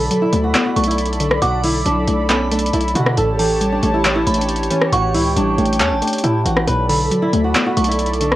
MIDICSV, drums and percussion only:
0, 0, Header, 1, 2, 480
1, 0, Start_track
1, 0, Key_signature, 2, "minor"
1, 0, Tempo, 437956
1, 1556, Time_signature, 4, 2, 24, 8
1, 9160, End_track
2, 0, Start_track
2, 0, Title_t, "Drums"
2, 118, Note_on_c, 9, 42, 87
2, 228, Note_off_c, 9, 42, 0
2, 357, Note_on_c, 9, 42, 71
2, 466, Note_off_c, 9, 42, 0
2, 596, Note_on_c, 9, 42, 86
2, 597, Note_on_c, 9, 39, 114
2, 706, Note_off_c, 9, 42, 0
2, 707, Note_off_c, 9, 39, 0
2, 838, Note_on_c, 9, 42, 94
2, 917, Note_off_c, 9, 42, 0
2, 917, Note_on_c, 9, 42, 83
2, 997, Note_off_c, 9, 42, 0
2, 997, Note_on_c, 9, 42, 73
2, 1078, Note_off_c, 9, 42, 0
2, 1078, Note_on_c, 9, 42, 66
2, 1158, Note_off_c, 9, 42, 0
2, 1158, Note_on_c, 9, 42, 61
2, 1238, Note_off_c, 9, 42, 0
2, 1238, Note_on_c, 9, 42, 53
2, 1317, Note_off_c, 9, 42, 0
2, 1317, Note_on_c, 9, 42, 94
2, 1426, Note_off_c, 9, 42, 0
2, 1437, Note_on_c, 9, 37, 100
2, 1547, Note_off_c, 9, 37, 0
2, 1557, Note_on_c, 9, 42, 89
2, 1667, Note_off_c, 9, 42, 0
2, 1796, Note_on_c, 9, 46, 82
2, 1906, Note_off_c, 9, 46, 0
2, 2039, Note_on_c, 9, 42, 87
2, 2148, Note_off_c, 9, 42, 0
2, 2277, Note_on_c, 9, 42, 71
2, 2386, Note_off_c, 9, 42, 0
2, 2516, Note_on_c, 9, 42, 85
2, 2517, Note_on_c, 9, 39, 110
2, 2626, Note_off_c, 9, 42, 0
2, 2627, Note_off_c, 9, 39, 0
2, 2757, Note_on_c, 9, 42, 95
2, 2837, Note_off_c, 9, 42, 0
2, 2837, Note_on_c, 9, 42, 86
2, 2917, Note_off_c, 9, 42, 0
2, 2917, Note_on_c, 9, 42, 75
2, 2996, Note_off_c, 9, 42, 0
2, 2996, Note_on_c, 9, 42, 69
2, 3076, Note_off_c, 9, 42, 0
2, 3076, Note_on_c, 9, 42, 60
2, 3157, Note_off_c, 9, 42, 0
2, 3157, Note_on_c, 9, 42, 54
2, 3237, Note_off_c, 9, 42, 0
2, 3237, Note_on_c, 9, 42, 95
2, 3347, Note_off_c, 9, 42, 0
2, 3357, Note_on_c, 9, 37, 101
2, 3466, Note_off_c, 9, 37, 0
2, 3477, Note_on_c, 9, 42, 86
2, 3587, Note_off_c, 9, 42, 0
2, 3717, Note_on_c, 9, 46, 82
2, 3826, Note_off_c, 9, 46, 0
2, 3958, Note_on_c, 9, 42, 88
2, 4067, Note_off_c, 9, 42, 0
2, 4196, Note_on_c, 9, 42, 71
2, 4305, Note_off_c, 9, 42, 0
2, 4436, Note_on_c, 9, 42, 82
2, 4437, Note_on_c, 9, 39, 109
2, 4545, Note_off_c, 9, 42, 0
2, 4547, Note_off_c, 9, 39, 0
2, 4677, Note_on_c, 9, 42, 93
2, 4757, Note_off_c, 9, 42, 0
2, 4757, Note_on_c, 9, 42, 87
2, 4837, Note_off_c, 9, 42, 0
2, 4837, Note_on_c, 9, 42, 78
2, 4917, Note_off_c, 9, 42, 0
2, 4917, Note_on_c, 9, 42, 71
2, 4997, Note_off_c, 9, 42, 0
2, 4997, Note_on_c, 9, 42, 61
2, 5076, Note_off_c, 9, 42, 0
2, 5076, Note_on_c, 9, 42, 53
2, 5157, Note_off_c, 9, 42, 0
2, 5157, Note_on_c, 9, 42, 94
2, 5266, Note_off_c, 9, 42, 0
2, 5276, Note_on_c, 9, 37, 103
2, 5386, Note_off_c, 9, 37, 0
2, 5397, Note_on_c, 9, 42, 89
2, 5507, Note_off_c, 9, 42, 0
2, 5636, Note_on_c, 9, 46, 81
2, 5746, Note_off_c, 9, 46, 0
2, 5878, Note_on_c, 9, 42, 89
2, 5987, Note_off_c, 9, 42, 0
2, 6117, Note_on_c, 9, 42, 43
2, 6197, Note_off_c, 9, 42, 0
2, 6197, Note_on_c, 9, 42, 58
2, 6276, Note_off_c, 9, 42, 0
2, 6276, Note_on_c, 9, 42, 82
2, 6356, Note_off_c, 9, 42, 0
2, 6356, Note_on_c, 9, 42, 84
2, 6357, Note_on_c, 9, 39, 113
2, 6465, Note_off_c, 9, 42, 0
2, 6467, Note_off_c, 9, 39, 0
2, 6597, Note_on_c, 9, 42, 75
2, 6657, Note_off_c, 9, 42, 0
2, 6657, Note_on_c, 9, 42, 80
2, 6717, Note_off_c, 9, 42, 0
2, 6717, Note_on_c, 9, 42, 76
2, 6777, Note_off_c, 9, 42, 0
2, 6777, Note_on_c, 9, 42, 74
2, 6837, Note_off_c, 9, 42, 0
2, 6837, Note_on_c, 9, 42, 77
2, 6946, Note_off_c, 9, 42, 0
2, 7077, Note_on_c, 9, 42, 93
2, 7187, Note_off_c, 9, 42, 0
2, 7197, Note_on_c, 9, 37, 102
2, 7307, Note_off_c, 9, 37, 0
2, 7318, Note_on_c, 9, 42, 90
2, 7427, Note_off_c, 9, 42, 0
2, 7557, Note_on_c, 9, 46, 81
2, 7667, Note_off_c, 9, 46, 0
2, 7799, Note_on_c, 9, 42, 88
2, 7908, Note_off_c, 9, 42, 0
2, 8037, Note_on_c, 9, 42, 72
2, 8146, Note_off_c, 9, 42, 0
2, 8275, Note_on_c, 9, 42, 85
2, 8277, Note_on_c, 9, 39, 113
2, 8385, Note_off_c, 9, 42, 0
2, 8386, Note_off_c, 9, 39, 0
2, 8516, Note_on_c, 9, 42, 92
2, 8596, Note_off_c, 9, 42, 0
2, 8596, Note_on_c, 9, 42, 84
2, 8676, Note_off_c, 9, 42, 0
2, 8676, Note_on_c, 9, 42, 78
2, 8756, Note_off_c, 9, 42, 0
2, 8756, Note_on_c, 9, 42, 67
2, 8836, Note_off_c, 9, 42, 0
2, 8836, Note_on_c, 9, 42, 59
2, 8916, Note_off_c, 9, 42, 0
2, 8916, Note_on_c, 9, 42, 55
2, 8996, Note_off_c, 9, 42, 0
2, 8996, Note_on_c, 9, 42, 96
2, 9105, Note_off_c, 9, 42, 0
2, 9116, Note_on_c, 9, 37, 100
2, 9160, Note_off_c, 9, 37, 0
2, 9160, End_track
0, 0, End_of_file